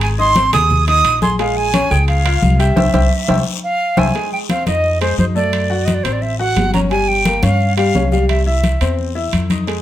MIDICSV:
0, 0, Header, 1, 5, 480
1, 0, Start_track
1, 0, Key_signature, -4, "minor"
1, 0, Tempo, 344828
1, 22, Time_signature, 4, 2, 24, 8
1, 13667, End_track
2, 0, Start_track
2, 0, Title_t, "Flute"
2, 0, Program_c, 0, 73
2, 35, Note_on_c, 0, 80, 94
2, 119, Note_off_c, 0, 80, 0
2, 271, Note_on_c, 0, 84, 117
2, 713, Note_off_c, 0, 84, 0
2, 743, Note_on_c, 0, 87, 103
2, 1188, Note_off_c, 0, 87, 0
2, 1221, Note_on_c, 0, 87, 124
2, 1667, Note_off_c, 0, 87, 0
2, 1702, Note_on_c, 0, 84, 88
2, 1924, Note_off_c, 0, 84, 0
2, 1947, Note_on_c, 0, 77, 92
2, 2183, Note_on_c, 0, 80, 107
2, 2204, Note_off_c, 0, 77, 0
2, 2660, Note_on_c, 0, 79, 96
2, 2681, Note_off_c, 0, 80, 0
2, 2888, Note_off_c, 0, 79, 0
2, 2896, Note_on_c, 0, 77, 95
2, 3617, Note_on_c, 0, 76, 76
2, 3638, Note_off_c, 0, 77, 0
2, 4675, Note_off_c, 0, 76, 0
2, 5066, Note_on_c, 0, 77, 106
2, 5548, Note_on_c, 0, 80, 90
2, 5569, Note_off_c, 0, 77, 0
2, 6015, Note_off_c, 0, 80, 0
2, 6024, Note_on_c, 0, 79, 83
2, 6107, Note_off_c, 0, 79, 0
2, 6264, Note_on_c, 0, 77, 77
2, 6484, Note_off_c, 0, 77, 0
2, 6497, Note_on_c, 0, 75, 84
2, 6943, Note_off_c, 0, 75, 0
2, 6981, Note_on_c, 0, 72, 81
2, 7203, Note_off_c, 0, 72, 0
2, 7225, Note_on_c, 0, 72, 85
2, 7308, Note_off_c, 0, 72, 0
2, 7460, Note_on_c, 0, 74, 81
2, 8145, Note_on_c, 0, 75, 73
2, 8166, Note_off_c, 0, 74, 0
2, 8273, Note_on_c, 0, 74, 70
2, 8294, Note_off_c, 0, 75, 0
2, 8401, Note_on_c, 0, 72, 74
2, 8422, Note_off_c, 0, 74, 0
2, 8527, Note_on_c, 0, 74, 71
2, 8548, Note_off_c, 0, 72, 0
2, 8657, Note_on_c, 0, 76, 82
2, 8677, Note_off_c, 0, 74, 0
2, 8887, Note_off_c, 0, 76, 0
2, 8895, Note_on_c, 0, 78, 103
2, 9344, Note_off_c, 0, 78, 0
2, 9380, Note_on_c, 0, 82, 77
2, 9464, Note_off_c, 0, 82, 0
2, 9615, Note_on_c, 0, 80, 99
2, 9861, Note_on_c, 0, 79, 103
2, 9882, Note_off_c, 0, 80, 0
2, 10346, Note_on_c, 0, 77, 94
2, 10367, Note_off_c, 0, 79, 0
2, 10814, Note_off_c, 0, 77, 0
2, 10823, Note_on_c, 0, 77, 91
2, 11269, Note_off_c, 0, 77, 0
2, 11299, Note_on_c, 0, 77, 73
2, 11524, Note_off_c, 0, 77, 0
2, 11538, Note_on_c, 0, 76, 83
2, 11763, Note_off_c, 0, 76, 0
2, 11782, Note_on_c, 0, 76, 77
2, 12452, Note_off_c, 0, 76, 0
2, 13667, End_track
3, 0, Start_track
3, 0, Title_t, "Upright piano"
3, 0, Program_c, 1, 0
3, 0, Note_on_c, 1, 68, 80
3, 0, Note_on_c, 1, 80, 77
3, 0, Note_on_c, 1, 92, 80
3, 177, Note_off_c, 1, 68, 0
3, 180, Note_off_c, 1, 80, 0
3, 182, Note_off_c, 1, 92, 0
3, 255, Note_on_c, 1, 63, 73
3, 261, Note_on_c, 1, 75, 77
3, 264, Note_on_c, 1, 87, 71
3, 454, Note_off_c, 1, 63, 0
3, 458, Note_off_c, 1, 75, 0
3, 460, Note_off_c, 1, 87, 0
3, 501, Note_on_c, 1, 60, 75
3, 507, Note_on_c, 1, 72, 76
3, 510, Note_on_c, 1, 84, 71
3, 698, Note_off_c, 1, 60, 0
3, 701, Note_off_c, 1, 72, 0
3, 703, Note_off_c, 1, 84, 0
3, 738, Note_on_c, 1, 68, 73
3, 738, Note_on_c, 1, 80, 77
3, 745, Note_on_c, 1, 92, 70
3, 1132, Note_off_c, 1, 68, 0
3, 1132, Note_off_c, 1, 80, 0
3, 1137, Note_off_c, 1, 92, 0
3, 1215, Note_on_c, 1, 63, 77
3, 1221, Note_on_c, 1, 75, 78
3, 1224, Note_on_c, 1, 87, 76
3, 1611, Note_off_c, 1, 63, 0
3, 1614, Note_off_c, 1, 75, 0
3, 1616, Note_off_c, 1, 87, 0
3, 1697, Note_on_c, 1, 68, 78
3, 1701, Note_on_c, 1, 80, 76
3, 1706, Note_on_c, 1, 92, 78
3, 1895, Note_off_c, 1, 68, 0
3, 1897, Note_off_c, 1, 80, 0
3, 1900, Note_off_c, 1, 92, 0
3, 1935, Note_on_c, 1, 56, 80
3, 1941, Note_on_c, 1, 68, 79
3, 1944, Note_on_c, 1, 80, 69
3, 2330, Note_off_c, 1, 56, 0
3, 2333, Note_off_c, 1, 68, 0
3, 2335, Note_off_c, 1, 80, 0
3, 2415, Note_on_c, 1, 61, 84
3, 2421, Note_on_c, 1, 73, 77
3, 2424, Note_on_c, 1, 85, 75
3, 2613, Note_off_c, 1, 61, 0
3, 2617, Note_off_c, 1, 73, 0
3, 2619, Note_off_c, 1, 85, 0
3, 2652, Note_on_c, 1, 68, 71
3, 2661, Note_on_c, 1, 80, 72
3, 2662, Note_on_c, 1, 92, 75
3, 3048, Note_off_c, 1, 68, 0
3, 3053, Note_off_c, 1, 80, 0
3, 3053, Note_off_c, 1, 92, 0
3, 3129, Note_on_c, 1, 65, 82
3, 3136, Note_on_c, 1, 77, 78
3, 3141, Note_on_c, 1, 89, 71
3, 3526, Note_off_c, 1, 65, 0
3, 3530, Note_off_c, 1, 77, 0
3, 3533, Note_off_c, 1, 89, 0
3, 3608, Note_on_c, 1, 67, 78
3, 3610, Note_on_c, 1, 79, 77
3, 3618, Note_on_c, 1, 91, 72
3, 3808, Note_off_c, 1, 67, 0
3, 3809, Note_off_c, 1, 79, 0
3, 3814, Note_off_c, 1, 91, 0
3, 3846, Note_on_c, 1, 72, 89
3, 3846, Note_on_c, 1, 76, 89
3, 3846, Note_on_c, 1, 79, 91
3, 4004, Note_off_c, 1, 72, 0
3, 4004, Note_off_c, 1, 76, 0
3, 4004, Note_off_c, 1, 79, 0
3, 4086, Note_on_c, 1, 72, 87
3, 4088, Note_on_c, 1, 76, 96
3, 4089, Note_on_c, 1, 79, 101
3, 4244, Note_off_c, 1, 72, 0
3, 4245, Note_off_c, 1, 76, 0
3, 4246, Note_off_c, 1, 79, 0
3, 4571, Note_on_c, 1, 72, 93
3, 4573, Note_on_c, 1, 76, 106
3, 4573, Note_on_c, 1, 79, 93
3, 4727, Note_off_c, 1, 72, 0
3, 4728, Note_off_c, 1, 76, 0
3, 4728, Note_off_c, 1, 79, 0
3, 5528, Note_on_c, 1, 72, 98
3, 5529, Note_on_c, 1, 76, 101
3, 5529, Note_on_c, 1, 79, 98
3, 5685, Note_off_c, 1, 72, 0
3, 5685, Note_off_c, 1, 76, 0
3, 5685, Note_off_c, 1, 79, 0
3, 5767, Note_on_c, 1, 56, 67
3, 5771, Note_on_c, 1, 68, 69
3, 6164, Note_off_c, 1, 56, 0
3, 6167, Note_off_c, 1, 68, 0
3, 6255, Note_on_c, 1, 60, 63
3, 6257, Note_on_c, 1, 72, 66
3, 6452, Note_off_c, 1, 60, 0
3, 6454, Note_off_c, 1, 72, 0
3, 6493, Note_on_c, 1, 63, 67
3, 6499, Note_on_c, 1, 75, 67
3, 6888, Note_off_c, 1, 63, 0
3, 6892, Note_off_c, 1, 75, 0
3, 6977, Note_on_c, 1, 56, 83
3, 6977, Note_on_c, 1, 68, 76
3, 7174, Note_off_c, 1, 56, 0
3, 7174, Note_off_c, 1, 68, 0
3, 7213, Note_on_c, 1, 63, 64
3, 7216, Note_on_c, 1, 75, 59
3, 7412, Note_off_c, 1, 63, 0
3, 7413, Note_off_c, 1, 75, 0
3, 7448, Note_on_c, 1, 57, 64
3, 7452, Note_on_c, 1, 69, 75
3, 7846, Note_off_c, 1, 57, 0
3, 7848, Note_off_c, 1, 69, 0
3, 7933, Note_on_c, 1, 66, 65
3, 7938, Note_on_c, 1, 78, 69
3, 8329, Note_off_c, 1, 66, 0
3, 8332, Note_off_c, 1, 78, 0
3, 8417, Note_on_c, 1, 60, 66
3, 8420, Note_on_c, 1, 72, 73
3, 8811, Note_off_c, 1, 60, 0
3, 8814, Note_off_c, 1, 72, 0
3, 8902, Note_on_c, 1, 66, 69
3, 8902, Note_on_c, 1, 78, 72
3, 9295, Note_off_c, 1, 66, 0
3, 9295, Note_off_c, 1, 78, 0
3, 9384, Note_on_c, 1, 61, 76
3, 9388, Note_on_c, 1, 73, 72
3, 9579, Note_off_c, 1, 61, 0
3, 9582, Note_off_c, 1, 73, 0
3, 9618, Note_on_c, 1, 55, 70
3, 9624, Note_on_c, 1, 67, 71
3, 10013, Note_off_c, 1, 55, 0
3, 10016, Note_off_c, 1, 67, 0
3, 10097, Note_on_c, 1, 58, 62
3, 10099, Note_on_c, 1, 70, 69
3, 10295, Note_off_c, 1, 58, 0
3, 10296, Note_off_c, 1, 70, 0
3, 10334, Note_on_c, 1, 61, 63
3, 10339, Note_on_c, 1, 73, 68
3, 10731, Note_off_c, 1, 61, 0
3, 10734, Note_off_c, 1, 73, 0
3, 10818, Note_on_c, 1, 55, 87
3, 10823, Note_on_c, 1, 67, 74
3, 11016, Note_off_c, 1, 55, 0
3, 11019, Note_off_c, 1, 67, 0
3, 11066, Note_on_c, 1, 61, 69
3, 11067, Note_on_c, 1, 73, 61
3, 11261, Note_off_c, 1, 61, 0
3, 11262, Note_off_c, 1, 73, 0
3, 11301, Note_on_c, 1, 55, 73
3, 11307, Note_on_c, 1, 67, 73
3, 11695, Note_off_c, 1, 55, 0
3, 11698, Note_off_c, 1, 67, 0
3, 11780, Note_on_c, 1, 64, 67
3, 11785, Note_on_c, 1, 76, 67
3, 12175, Note_off_c, 1, 64, 0
3, 12178, Note_off_c, 1, 76, 0
3, 12266, Note_on_c, 1, 60, 66
3, 12274, Note_on_c, 1, 72, 69
3, 12659, Note_off_c, 1, 60, 0
3, 12663, Note_off_c, 1, 72, 0
3, 12739, Note_on_c, 1, 64, 69
3, 12745, Note_on_c, 1, 76, 68
3, 13134, Note_off_c, 1, 64, 0
3, 13138, Note_off_c, 1, 76, 0
3, 13225, Note_on_c, 1, 63, 68
3, 13230, Note_on_c, 1, 75, 72
3, 13421, Note_off_c, 1, 63, 0
3, 13424, Note_off_c, 1, 75, 0
3, 13464, Note_on_c, 1, 56, 70
3, 13468, Note_on_c, 1, 68, 72
3, 13667, Note_off_c, 1, 56, 0
3, 13667, Note_off_c, 1, 68, 0
3, 13667, End_track
4, 0, Start_track
4, 0, Title_t, "Upright bass"
4, 0, Program_c, 2, 32
4, 0, Note_on_c, 2, 32, 90
4, 661, Note_off_c, 2, 32, 0
4, 736, Note_on_c, 2, 39, 94
4, 1407, Note_off_c, 2, 39, 0
4, 1457, Note_on_c, 2, 34, 84
4, 2577, Note_off_c, 2, 34, 0
4, 2657, Note_on_c, 2, 37, 94
4, 3326, Note_off_c, 2, 37, 0
4, 3374, Note_on_c, 2, 36, 104
4, 3822, Note_off_c, 2, 36, 0
4, 3853, Note_on_c, 2, 36, 99
4, 4033, Note_off_c, 2, 36, 0
4, 4095, Note_on_c, 2, 36, 96
4, 4274, Note_off_c, 2, 36, 0
4, 4577, Note_on_c, 2, 36, 91
4, 4755, Note_off_c, 2, 36, 0
4, 5531, Note_on_c, 2, 36, 93
4, 5712, Note_off_c, 2, 36, 0
4, 6490, Note_on_c, 2, 41, 83
4, 7163, Note_off_c, 2, 41, 0
4, 7211, Note_on_c, 2, 42, 86
4, 8336, Note_off_c, 2, 42, 0
4, 8412, Note_on_c, 2, 33, 85
4, 9086, Note_off_c, 2, 33, 0
4, 9133, Note_on_c, 2, 31, 87
4, 10258, Note_off_c, 2, 31, 0
4, 10338, Note_on_c, 2, 43, 85
4, 11010, Note_off_c, 2, 43, 0
4, 11062, Note_on_c, 2, 36, 88
4, 12183, Note_off_c, 2, 36, 0
4, 12265, Note_on_c, 2, 40, 85
4, 12934, Note_off_c, 2, 40, 0
4, 12988, Note_on_c, 2, 41, 75
4, 13667, Note_off_c, 2, 41, 0
4, 13667, End_track
5, 0, Start_track
5, 0, Title_t, "Drums"
5, 17, Note_on_c, 9, 74, 66
5, 19, Note_on_c, 9, 65, 86
5, 22, Note_on_c, 9, 63, 35
5, 156, Note_off_c, 9, 74, 0
5, 158, Note_off_c, 9, 65, 0
5, 161, Note_off_c, 9, 63, 0
5, 260, Note_on_c, 9, 63, 36
5, 400, Note_off_c, 9, 63, 0
5, 496, Note_on_c, 9, 63, 94
5, 498, Note_on_c, 9, 73, 66
5, 502, Note_on_c, 9, 65, 66
5, 635, Note_off_c, 9, 63, 0
5, 637, Note_off_c, 9, 73, 0
5, 641, Note_off_c, 9, 65, 0
5, 738, Note_on_c, 9, 65, 93
5, 738, Note_on_c, 9, 73, 77
5, 745, Note_on_c, 9, 63, 36
5, 745, Note_on_c, 9, 64, 86
5, 878, Note_off_c, 9, 65, 0
5, 878, Note_off_c, 9, 73, 0
5, 885, Note_off_c, 9, 63, 0
5, 885, Note_off_c, 9, 64, 0
5, 977, Note_on_c, 9, 74, 64
5, 985, Note_on_c, 9, 63, 29
5, 985, Note_on_c, 9, 64, 68
5, 1117, Note_off_c, 9, 74, 0
5, 1124, Note_off_c, 9, 63, 0
5, 1124, Note_off_c, 9, 64, 0
5, 1222, Note_on_c, 9, 63, 35
5, 1222, Note_on_c, 9, 65, 71
5, 1361, Note_off_c, 9, 63, 0
5, 1362, Note_off_c, 9, 65, 0
5, 1455, Note_on_c, 9, 73, 67
5, 1456, Note_on_c, 9, 65, 81
5, 1459, Note_on_c, 9, 63, 32
5, 1595, Note_off_c, 9, 65, 0
5, 1595, Note_off_c, 9, 73, 0
5, 1598, Note_off_c, 9, 63, 0
5, 1697, Note_on_c, 9, 73, 68
5, 1698, Note_on_c, 9, 63, 91
5, 1836, Note_off_c, 9, 73, 0
5, 1837, Note_off_c, 9, 63, 0
5, 1937, Note_on_c, 9, 63, 41
5, 1939, Note_on_c, 9, 65, 65
5, 1941, Note_on_c, 9, 74, 71
5, 2077, Note_off_c, 9, 63, 0
5, 2078, Note_off_c, 9, 65, 0
5, 2080, Note_off_c, 9, 74, 0
5, 2176, Note_on_c, 9, 63, 33
5, 2315, Note_off_c, 9, 63, 0
5, 2418, Note_on_c, 9, 65, 96
5, 2418, Note_on_c, 9, 73, 71
5, 2420, Note_on_c, 9, 63, 97
5, 2557, Note_off_c, 9, 65, 0
5, 2557, Note_off_c, 9, 73, 0
5, 2559, Note_off_c, 9, 63, 0
5, 2658, Note_on_c, 9, 63, 34
5, 2663, Note_on_c, 9, 73, 79
5, 2797, Note_off_c, 9, 63, 0
5, 2802, Note_off_c, 9, 73, 0
5, 2895, Note_on_c, 9, 65, 64
5, 2897, Note_on_c, 9, 63, 32
5, 2901, Note_on_c, 9, 74, 66
5, 3034, Note_off_c, 9, 65, 0
5, 3036, Note_off_c, 9, 63, 0
5, 3040, Note_off_c, 9, 74, 0
5, 3135, Note_on_c, 9, 63, 33
5, 3140, Note_on_c, 9, 65, 92
5, 3274, Note_off_c, 9, 63, 0
5, 3279, Note_off_c, 9, 65, 0
5, 3373, Note_on_c, 9, 63, 79
5, 3377, Note_on_c, 9, 73, 59
5, 3512, Note_off_c, 9, 63, 0
5, 3516, Note_off_c, 9, 73, 0
5, 3610, Note_on_c, 9, 63, 37
5, 3615, Note_on_c, 9, 73, 71
5, 3619, Note_on_c, 9, 65, 65
5, 3749, Note_off_c, 9, 63, 0
5, 3754, Note_off_c, 9, 73, 0
5, 3759, Note_off_c, 9, 65, 0
5, 3852, Note_on_c, 9, 74, 102
5, 3853, Note_on_c, 9, 63, 110
5, 3860, Note_on_c, 9, 65, 95
5, 3991, Note_off_c, 9, 74, 0
5, 3992, Note_off_c, 9, 63, 0
5, 3999, Note_off_c, 9, 65, 0
5, 4091, Note_on_c, 9, 63, 93
5, 4092, Note_on_c, 9, 74, 91
5, 4093, Note_on_c, 9, 65, 87
5, 4230, Note_off_c, 9, 63, 0
5, 4232, Note_off_c, 9, 74, 0
5, 4233, Note_off_c, 9, 65, 0
5, 4569, Note_on_c, 9, 63, 102
5, 4571, Note_on_c, 9, 74, 113
5, 4574, Note_on_c, 9, 65, 98
5, 4708, Note_off_c, 9, 63, 0
5, 4710, Note_off_c, 9, 74, 0
5, 4713, Note_off_c, 9, 65, 0
5, 5528, Note_on_c, 9, 63, 108
5, 5536, Note_on_c, 9, 65, 98
5, 5538, Note_on_c, 9, 74, 92
5, 5667, Note_off_c, 9, 63, 0
5, 5675, Note_off_c, 9, 65, 0
5, 5677, Note_off_c, 9, 74, 0
5, 5777, Note_on_c, 9, 63, 36
5, 5777, Note_on_c, 9, 74, 61
5, 5783, Note_on_c, 9, 65, 61
5, 5916, Note_off_c, 9, 63, 0
5, 5916, Note_off_c, 9, 74, 0
5, 5923, Note_off_c, 9, 65, 0
5, 6018, Note_on_c, 9, 63, 34
5, 6157, Note_off_c, 9, 63, 0
5, 6256, Note_on_c, 9, 63, 92
5, 6259, Note_on_c, 9, 73, 65
5, 6260, Note_on_c, 9, 65, 76
5, 6395, Note_off_c, 9, 63, 0
5, 6398, Note_off_c, 9, 73, 0
5, 6399, Note_off_c, 9, 65, 0
5, 6496, Note_on_c, 9, 63, 82
5, 6499, Note_on_c, 9, 65, 63
5, 6499, Note_on_c, 9, 73, 70
5, 6635, Note_off_c, 9, 63, 0
5, 6638, Note_off_c, 9, 65, 0
5, 6638, Note_off_c, 9, 73, 0
5, 6735, Note_on_c, 9, 74, 58
5, 6737, Note_on_c, 9, 63, 29
5, 6875, Note_off_c, 9, 74, 0
5, 6876, Note_off_c, 9, 63, 0
5, 6977, Note_on_c, 9, 63, 29
5, 6981, Note_on_c, 9, 65, 83
5, 7116, Note_off_c, 9, 63, 0
5, 7120, Note_off_c, 9, 65, 0
5, 7218, Note_on_c, 9, 73, 61
5, 7221, Note_on_c, 9, 63, 74
5, 7357, Note_off_c, 9, 73, 0
5, 7360, Note_off_c, 9, 63, 0
5, 7459, Note_on_c, 9, 73, 54
5, 7598, Note_off_c, 9, 73, 0
5, 7698, Note_on_c, 9, 65, 84
5, 7699, Note_on_c, 9, 74, 56
5, 7702, Note_on_c, 9, 63, 31
5, 7838, Note_off_c, 9, 65, 0
5, 7839, Note_off_c, 9, 74, 0
5, 7841, Note_off_c, 9, 63, 0
5, 7942, Note_on_c, 9, 63, 34
5, 8082, Note_off_c, 9, 63, 0
5, 8177, Note_on_c, 9, 73, 69
5, 8180, Note_on_c, 9, 65, 58
5, 8181, Note_on_c, 9, 63, 88
5, 8316, Note_off_c, 9, 73, 0
5, 8319, Note_off_c, 9, 65, 0
5, 8320, Note_off_c, 9, 63, 0
5, 8420, Note_on_c, 9, 65, 89
5, 8422, Note_on_c, 9, 73, 63
5, 8423, Note_on_c, 9, 63, 35
5, 8560, Note_off_c, 9, 65, 0
5, 8561, Note_off_c, 9, 73, 0
5, 8562, Note_off_c, 9, 63, 0
5, 8658, Note_on_c, 9, 74, 66
5, 8664, Note_on_c, 9, 63, 30
5, 8798, Note_off_c, 9, 74, 0
5, 8803, Note_off_c, 9, 63, 0
5, 8902, Note_on_c, 9, 63, 29
5, 9041, Note_off_c, 9, 63, 0
5, 9139, Note_on_c, 9, 63, 72
5, 9140, Note_on_c, 9, 65, 78
5, 9140, Note_on_c, 9, 66, 66
5, 9141, Note_on_c, 9, 73, 56
5, 9278, Note_off_c, 9, 63, 0
5, 9279, Note_off_c, 9, 65, 0
5, 9279, Note_off_c, 9, 66, 0
5, 9281, Note_off_c, 9, 73, 0
5, 9377, Note_on_c, 9, 65, 63
5, 9381, Note_on_c, 9, 73, 67
5, 9382, Note_on_c, 9, 63, 86
5, 9517, Note_off_c, 9, 65, 0
5, 9520, Note_off_c, 9, 73, 0
5, 9521, Note_off_c, 9, 63, 0
5, 9619, Note_on_c, 9, 74, 65
5, 9621, Note_on_c, 9, 65, 58
5, 9622, Note_on_c, 9, 63, 34
5, 9758, Note_off_c, 9, 74, 0
5, 9760, Note_off_c, 9, 65, 0
5, 9761, Note_off_c, 9, 63, 0
5, 9860, Note_on_c, 9, 63, 32
5, 9999, Note_off_c, 9, 63, 0
5, 10097, Note_on_c, 9, 63, 94
5, 10099, Note_on_c, 9, 65, 76
5, 10101, Note_on_c, 9, 73, 62
5, 10237, Note_off_c, 9, 63, 0
5, 10238, Note_off_c, 9, 65, 0
5, 10241, Note_off_c, 9, 73, 0
5, 10337, Note_on_c, 9, 63, 93
5, 10345, Note_on_c, 9, 73, 72
5, 10346, Note_on_c, 9, 65, 65
5, 10476, Note_off_c, 9, 63, 0
5, 10484, Note_off_c, 9, 73, 0
5, 10485, Note_off_c, 9, 65, 0
5, 10584, Note_on_c, 9, 63, 29
5, 10586, Note_on_c, 9, 74, 65
5, 10723, Note_off_c, 9, 63, 0
5, 10726, Note_off_c, 9, 74, 0
5, 10823, Note_on_c, 9, 65, 87
5, 10826, Note_on_c, 9, 63, 32
5, 10962, Note_off_c, 9, 65, 0
5, 10965, Note_off_c, 9, 63, 0
5, 11065, Note_on_c, 9, 63, 83
5, 11065, Note_on_c, 9, 66, 67
5, 11068, Note_on_c, 9, 73, 58
5, 11204, Note_off_c, 9, 66, 0
5, 11205, Note_off_c, 9, 63, 0
5, 11207, Note_off_c, 9, 73, 0
5, 11302, Note_on_c, 9, 63, 70
5, 11309, Note_on_c, 9, 73, 57
5, 11441, Note_off_c, 9, 63, 0
5, 11448, Note_off_c, 9, 73, 0
5, 11543, Note_on_c, 9, 65, 79
5, 11545, Note_on_c, 9, 63, 33
5, 11546, Note_on_c, 9, 74, 64
5, 11682, Note_off_c, 9, 65, 0
5, 11684, Note_off_c, 9, 63, 0
5, 11685, Note_off_c, 9, 74, 0
5, 11788, Note_on_c, 9, 63, 35
5, 11927, Note_off_c, 9, 63, 0
5, 12020, Note_on_c, 9, 63, 89
5, 12025, Note_on_c, 9, 65, 60
5, 12025, Note_on_c, 9, 73, 65
5, 12159, Note_off_c, 9, 63, 0
5, 12164, Note_off_c, 9, 65, 0
5, 12164, Note_off_c, 9, 73, 0
5, 12262, Note_on_c, 9, 63, 35
5, 12263, Note_on_c, 9, 65, 80
5, 12268, Note_on_c, 9, 73, 72
5, 12401, Note_off_c, 9, 63, 0
5, 12402, Note_off_c, 9, 65, 0
5, 12407, Note_off_c, 9, 73, 0
5, 12506, Note_on_c, 9, 63, 32
5, 12509, Note_on_c, 9, 74, 62
5, 12645, Note_off_c, 9, 63, 0
5, 12648, Note_off_c, 9, 74, 0
5, 12745, Note_on_c, 9, 63, 29
5, 12884, Note_off_c, 9, 63, 0
5, 12983, Note_on_c, 9, 63, 77
5, 12984, Note_on_c, 9, 73, 58
5, 12987, Note_on_c, 9, 65, 84
5, 13122, Note_off_c, 9, 63, 0
5, 13123, Note_off_c, 9, 73, 0
5, 13126, Note_off_c, 9, 65, 0
5, 13222, Note_on_c, 9, 63, 85
5, 13225, Note_on_c, 9, 73, 55
5, 13232, Note_on_c, 9, 65, 60
5, 13361, Note_off_c, 9, 63, 0
5, 13365, Note_off_c, 9, 73, 0
5, 13371, Note_off_c, 9, 65, 0
5, 13461, Note_on_c, 9, 63, 33
5, 13466, Note_on_c, 9, 74, 63
5, 13477, Note_on_c, 9, 65, 67
5, 13601, Note_off_c, 9, 63, 0
5, 13605, Note_off_c, 9, 74, 0
5, 13616, Note_off_c, 9, 65, 0
5, 13667, End_track
0, 0, End_of_file